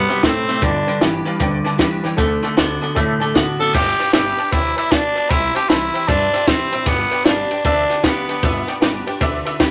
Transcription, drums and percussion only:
0.09 snare, closed hi-hat
0.23 kick, snare, closed hi-hat
0.49 snare, closed hi-hat
0.62 kick, snare, closed hi-hat
0.88 closed hi-hat
1.01 snare, closed hi-hat
1.27 closed hi-hat
1.40 kick, closed hi-hat
1.66 snare, closed hi-hat
1.79 kick, snare, closed hi-hat
2.05 snare, closed hi-hat
2.18 kick, snare, closed hi-hat
2.43 snare, closed hi-hat
2.58 snare, closed hi-hat
2.83 closed hi-hat
2.96 kick, closed hi-hat
3.22 closed hi-hat
3.35 kick, snare, closed hi-hat
3.61 snare, closed hi-hat
3.74 kick, snare, crash
4.00 snare, ride
4.13 snare, ride
4.38 ride
4.52 kick, ride
4.78 ride
4.92 kick, snare, ride
5.17 ride
5.31 kick, ride
5.56 snare, ride
5.70 snare, ride
5.95 ride
6.08 kick, ride
6.34 snare, ride
6.47 kick, snare, ride
6.72 ride
6.86 kick, snare, ride
7.12 ride
7.25 snare, ride
7.51 ride
7.65 kick, ride
7.90 snare, ride
8.04 kick, snare, ride
8.29 ride
8.43 kick, snare, ride
8.68 snare, ride
8.82 snare, ride
9.07 ride
9.21 kick, ride
9.46 snare, ride
9.60 kick, snare, ride

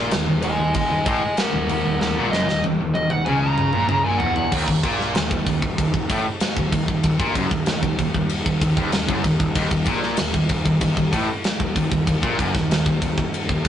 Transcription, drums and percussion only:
0.11 snare, ride
0.42 ride
0.74 kick, ride
1.06 kick, ride
1.37 snare, ride
1.69 ride
2.01 snare
2.33 snare
2.49 snare
2.64 high tom
2.95 high tom
3.10 mid tom
3.26 mid tom
3.58 mid tom
3.73 mid tom
3.89 mid tom
4.20 floor tom
4.36 floor tom
4.52 kick, crash
4.68 kick
4.83 kick, ride
5.00 snare
5.15 snare, ride
5.31 kick
5.47 kick, ride
5.62 kick
5.78 kick, ride
5.94 kick
6.10 kick, ride
6.40 snare, ride
6.57 kick
6.72 kick, ride
6.88 kick
7.03 kick, ride
7.20 kick
7.35 kick, ride
7.51 kick
7.66 snare, ride
7.83 kick
7.99 kick, ride
8.14 kick
8.29 ride
8.46 kick
8.62 kick, ride
8.77 kick
8.92 snare, ride
9.09 kick
9.24 kick, ride
9.40 kick
9.55 kick, ride
9.71 kick
9.86 kick, ride
10.03 snare
10.17 snare, ride
10.34 kick
10.49 kick, ride
10.66 kick
10.81 kick, ride
10.97 kick
11.13 kick, ride
11.44 snare, ride
11.60 kick
11.76 kick, ride
11.92 kick
12.07 kick, ride
12.23 kick
12.39 kick, ride
12.55 kick, snare
12.71 snare, ride
12.86 kick
13.02 kick, ride
13.18 kick
13.34 ride
13.49 kick
13.65 kick, ride

